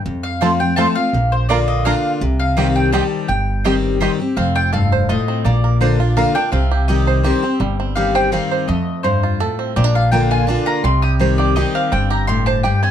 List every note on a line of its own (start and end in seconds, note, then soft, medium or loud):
0.06 0.83 F2 medium
0.06 0.74 F2 medium
0.23 0.57 F5 medium
0.41 0.60 F3 medium
0.41 0.60 A3 medium
0.41 0.50 C4 medium
0.41 0.60 C4 loud
0.41 0.51 F4 medium
0.41 0.50 F4 medium
0.41 0.59 F4 loud
0.41 0.50 A4 medium
0.41 0.51 C5 medium
0.41 0.51 A5 loud
0.60 0.77 C4 soft
0.60 0.77 F4 medium
0.60 0.76 G5 loud
0.76 0.95 F3 medium
0.76 0.96 A3 loud
0.76 0.86 C4 medium
0.76 0.96 C4 medium
0.76 0.87 F4 loud
0.76 0.86 F4 medium
0.76 0.95 F4 loud
0.76 0.86 A4 medium
0.76 0.87 C5 loud
0.76 0.95 A5 loud
0.76 0.87 A5 medium
0.95 1.14 C4 medium
0.95 1.13 F4 medium
0.95 1.33 F5 loud
1.13 1.91 A#1 medium
1.13 1.82 A#2 medium
1.32 1.48 C5 medium
1.49 1.84 D3 medium
1.49 1.59 A#3 medium
1.49 1.84 A#3 medium
1.49 1.58 D4 medium
1.49 1.84 D4 loud
1.49 1.59 F4 medium
1.49 1.58 F4 medium
1.49 1.85 F4 loud
1.49 1.58 A#4 medium
1.49 1.67 D5 medium
1.49 1.59 D5 medium
1.49 1.59 A#5 medium
1.68 1.84 D#5 medium
1.85 2.20 D3 medium
1.85 1.95 A#3 loud
1.85 2.20 A#3 medium
1.85 1.94 D4 medium
1.85 2.20 D4 medium
1.85 1.95 F4 medium
1.85 1.94 F4 medium
1.85 2.21 F4 medium
1.85 1.94 A#4 medium
1.85 1.95 D5 medium
1.85 2.11 F5 medium
1.85 1.95 A#5 loud
2.21 2.99 C2 medium
2.21 2.90 C3 medium
2.40 2.73 F5 medium
2.57 2.91 D#3 medium
2.57 2.92 G3 medium
2.57 2.66 C4 medium
2.57 2.92 C4 medium
2.57 2.67 G4 medium
2.57 2.60 G4 medium
2.57 2.92 G4 loud
2.57 2.67 D#5 medium
2.57 2.67 G5 loud
2.76 2.92 G5 medium
2.92 3.27 D#3 medium
2.92 3.27 G3 medium
2.92 3.02 C4 medium
2.92 3.28 C4 loud
2.92 3.03 G4 medium
2.92 3.28 G4 loud
2.92 2.96 G4 medium
2.92 3.03 D#5 medium
2.92 3.03 G5 medium
2.92 3.28 A5 medium
3.28 4.07 G1 medium
3.28 3.98 G2 medium
3.28 3.97 G5 medium
3.64 3.99 D#3 medium
3.64 3.99 G3 medium
3.64 3.74 C4 medium
3.64 4.00 C4 loud
3.64 3.74 G4 medium
3.64 3.68 G4 medium
3.64 4.00 G4 loud
3.64 3.74 D#5 medium
3.64 3.75 G5 medium
4.00 4.19 D#3 medium
4.00 4.19 G3 medium
4.00 4.10 C4 medium
4.00 4.19 C4 medium
4.00 4.10 G4 medium
4.00 4.04 G4 medium
4.00 4.18 G4 loud
4.00 4.10 D#5 medium
4.00 4.11 G5 medium
4.20 4.37 C4 soft
4.20 4.36 G4 medium
4.37 5.15 F1 medium
4.37 4.73 F2 medium
4.37 4.88 C4 medium
4.37 4.55 F5 medium
4.55 5.05 F4 medium
4.55 4.72 G5 loud
4.73 5.07 G2 medium
4.73 5.24 A4 medium
4.73 5.06 F5 medium
4.92 5.42 C5 medium
5.09 5.43 A2 medium
5.09 5.45 F4 medium
5.09 5.43 D#5 medium
5.28 5.45 C4 medium
5.45 6.23 A#1 medium
5.45 6.14 A#2 medium
5.45 5.96 A#3 medium
5.45 5.78 D5 medium
5.64 6.13 A#4 medium
5.81 5.99 D3 medium
5.81 5.99 A#3 medium
5.81 5.99 D4 loud
5.81 5.99 F4 medium
5.81 6.32 C5 medium
6.00 6.17 D4 medium
6.00 6.16 F4 medium
6.00 6.49 F4 medium
6.17 6.35 D3 medium
6.17 6.35 A#3 medium
6.17 6.35 D4 medium
6.17 6.34 F4 medium
6.17 6.53 A#4 medium
6.17 6.35 F5 medium
6.35 6.52 D4 medium
6.35 6.52 F4 medium
6.35 6.51 G5 loud
6.52 7.30 C2 loud
6.52 7.21 C3 medium
6.52 7.43 C4 medium
6.52 6.86 F5 medium
6.71 6.88 G4 medium
6.88 7.23 D#3 medium
6.88 7.23 G3 medium
6.88 7.23 C4 loud
6.88 7.23 G4 medium
6.88 7.23 G4 loud
6.88 7.22 D#5 medium
7.07 8.15 C5 medium
7.24 7.42 D#3 medium
7.24 7.43 G3 medium
7.24 7.43 C4 medium
7.24 7.76 G4 medium
7.24 7.41 G4 loud
7.24 7.57 C5 medium
7.42 7.78 C4 medium
7.42 7.60 C4 medium
7.42 7.59 G4 medium
7.60 8.38 G1 medium
7.60 8.29 G2 medium
7.60 8.12 G3 medium
7.80 8.29 C4 medium
7.95 8.31 D#3 medium
7.95 8.31 G3 medium
7.95 8.31 C4 medium
7.95 8.48 G4 medium
7.95 8.31 G4 medium
7.95 8.14 F5 medium
8.15 8.50 C5 medium
8.15 8.32 G5 loud
8.32 8.66 D#3 medium
8.32 8.67 G3 loud
8.32 8.69 C4 medium
8.32 8.67 C4 loud
8.32 8.67 G4 medium
8.32 8.66 F5 medium
8.51 8.69 C5 medium
8.68 9.46 F2 loud
8.68 9.04 F2 medium
8.68 9.20 A3 medium
8.68 9.01 D#5 medium
9.03 9.39 G2 medium
9.03 9.37 C5 medium
9.03 9.55 C5 medium
9.23 9.73 F4 medium
9.40 9.75 A2 medium
9.40 9.76 A4 medium
9.59 9.75 C4 medium
9.76 10.54 A#1 medium
9.76 10.45 A#2 medium
9.76 9.84 C4 medium
9.76 9.95 D5 medium
9.84 10.12 D4 medium
9.95 10.30 F4 medium
9.95 10.11 F5 medium
10.12 10.46 D3 medium
10.12 10.47 A#3 loud
10.12 10.47 D4 loud
10.12 10.47 F4 loud
10.12 10.64 A#4 medium
10.12 10.30 G5 medium
10.31 10.81 F4 medium
10.31 10.47 G#5 loud
10.47 10.83 D3 medium
10.47 10.83 A#3 loud
10.47 10.84 D4 medium
10.47 10.83 D4 medium
10.47 10.83 F4 loud
10.47 10.66 A5 medium
10.66 10.84 A#4 medium
10.66 10.83 A#5 loud
10.84 11.62 C2 medium
10.84 11.53 C3 medium
10.84 11.35 G3 medium
10.84 11.02 C6 medium
11.02 11.38 G4 medium
11.02 11.13 D#6 loud
11.19 11.54 D#3 medium
11.19 11.55 G3 medium
11.19 11.55 C4 medium
11.19 11.55 G4 loud
11.19 12.46 C5 medium
11.38 11.55 G4 medium
11.38 11.55 D5 loud
11.56 11.90 D#3 medium
11.56 11.91 G3 medium
11.56 11.91 C4 loud
11.56 12.08 G4 medium
11.56 11.91 G4 medium
11.56 11.74 D#5 medium
11.75 11.91 C4 medium
11.75 11.92 F5 loud
11.92 12.70 G1 medium
11.92 12.61 G2 medium
11.92 12.43 C4 medium
11.92 12.10 G5 medium
12.10 12.27 G4 medium
12.10 12.27 A#5 loud
12.27 12.63 A2 medium
12.27 12.63 G4 medium
12.27 12.46 C6 loud
12.46 12.91 C5 medium
12.46 12.63 A5 loud
12.63 12.91 G2 medium
12.63 12.91 G4 medium
12.63 12.82 G5 medium
12.83 12.91 C4 medium
12.83 12.91 G#5 medium